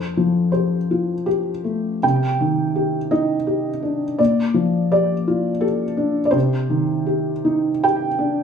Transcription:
0.00 1.98 F2 soft
0.00 0.50 C5 medium
0.17 0.76 F3 soft
0.52 1.12 G4 soft
0.52 1.26 C5 medium
0.91 1.50 F4 soft
1.26 2.02 G4 medium
1.64 2.03 A3 soft
2.03 4.16 C3 soft
2.03 3.12 G5 medium
2.41 2.98 D#3 soft
2.75 3.33 G4 soft
3.11 3.69 D#4 soft
3.11 4.19 D#5 medium
3.47 4.04 G4 soft
3.82 4.19 D4 soft
4.19 6.30 A#2 soft
4.19 4.90 D5 medium
4.54 5.12 F3 soft
4.92 5.49 G4 soft
4.92 5.63 D5 medium
5.28 5.84 F4 soft
5.61 6.19 G4 soft
5.61 6.27 A4 medium
5.97 6.34 D4 soft
6.25 6.33 D5 medium
6.31 8.43 C3 medium
6.31 7.83 C5 medium
6.70 7.30 D#3 soft
7.06 7.68 G4 soft
7.45 8.07 D#4 soft
7.84 8.43 G4 soft
7.84 8.43 G5 medium
8.19 8.43 D4 soft

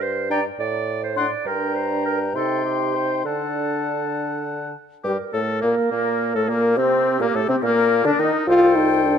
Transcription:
0.00 0.45 G2 medium
0.00 0.30 C5 medium
0.30 0.40 D4 medium
0.30 0.44 D5 medium
0.30 0.41 G5 medium
0.30 0.44 A#5 medium
0.59 1.31 A2 medium
0.59 1.01 D5 medium
1.03 1.18 C5 medium
1.16 1.26 D4 soft
1.16 1.48 D5 medium
1.16 1.27 F#5 medium
1.16 1.30 C6 medium
1.46 2.36 G2 medium
1.46 2.36 D4 medium
1.46 1.76 A#4 medium
1.46 2.31 G5 soft
1.46 2.37 A#5 medium
1.75 2.04 C5 medium
2.05 2.18 A#4 medium
2.35 3.24 C3 medium
2.35 3.27 D#4 soft
2.35 2.64 A4 medium
2.35 3.24 G5 medium
2.35 3.28 C6 soft
2.64 2.96 G4 medium
2.95 3.24 C5 medium
3.24 4.72 D3 soft
3.24 4.75 D4 soft
3.24 4.71 A4 medium
3.24 4.72 F#5 soft
3.24 4.75 A5 soft
5.04 5.17 G2 medium
5.04 5.17 G3 medium
5.04 5.17 G4 medium
5.04 5.12 G4 medium
5.04 6.74 A#4 medium
5.33 5.62 A2 medium
5.33 5.65 A3 medium
5.33 5.61 A4 medium
5.33 5.40 A4 medium
5.62 5.76 A#2 medium
5.62 5.75 A#3 medium
5.62 5.92 A#3 medium
5.62 5.69 A#4 medium
5.90 6.34 A#2 medium
5.90 6.33 A#3 medium
5.90 6.37 A#3 medium
5.90 6.34 A#4 medium
6.35 6.50 A2 medium
6.35 6.50 A3 medium
6.35 6.51 A4 medium
6.35 6.42 A4 medium
6.49 6.79 A#2 medium
6.49 6.77 A#3 medium
6.49 6.78 A#3 medium
6.49 6.79 A#4 medium
6.77 7.20 C3 medium
6.77 7.19 C4 medium
6.77 7.22 C4 medium
6.77 7.20 C4 medium
6.77 7.64 G4 medium
7.20 7.27 A#2 medium
7.20 7.36 A#3 medium
7.20 7.37 A#3 medium
7.20 7.36 A#4 medium
7.34 7.41 A2 medium
7.34 7.49 A3 medium
7.34 7.50 A4 medium
7.34 7.49 A4 medium
7.48 7.55 C3 medium
7.48 7.64 C4 medium
7.48 7.56 C4 medium
7.62 8.04 A#2 medium
7.62 8.04 A#3 medium
7.62 8.06 A#3 medium
7.62 8.47 A#4 medium
7.62 8.06 A#4 medium
8.04 8.11 D3 medium
8.04 8.21 D4 medium
8.04 8.11 D4 medium
8.04 8.22 D4 medium
8.19 8.32 D#3 medium
8.19 8.46 D#4 medium
8.19 8.48 D#4 medium
8.47 9.19 C2 medium
8.47 8.77 F4 loud
8.47 9.19 A4 medium
8.47 9.19 C5 medium
8.47 9.19 G5 medium
8.76 9.06 D#4 medium
9.04 9.19 D4 medium

